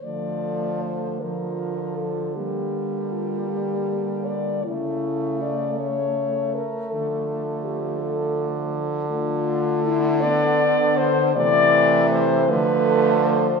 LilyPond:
<<
  \new Staff \with { instrumentName = "French horn" } { \time 6/8 \key d \minor \tempo 4. = 53 d''4 c''8 bes'4 a'8 | g'4 f'8 g'4 d''8 | e'4 d''8 cis''4 bes'8 | a'4 g'8 a'4 r8 |
\key d \dorian f'4 e'8 d''4 c''8 | d''4 c''8 b'4 c''8 | }
  \new Staff \with { instrumentName = "French horn" } { \time 6/8 \key d \minor a4. f4. | bes2. | a2~ a8 r8 | f2. |
\key d \dorian a4. b4. | a4. a4. | }
  \new Staff \with { instrumentName = "French horn" } { \clef bass \time 6/8 \key d \minor f4. f4. | g2. | a4. a4.~ | a2~ a8 r8 |
\key d \dorian d2. | e4. f4. | }
  \new Staff \with { instrumentName = "French horn" } { \clef bass \time 6/8 \key d \minor d2.~ | d2. | cis2~ cis8 r8 | d2.~ |
\key d \dorian d2. | c4. d4. | }
>>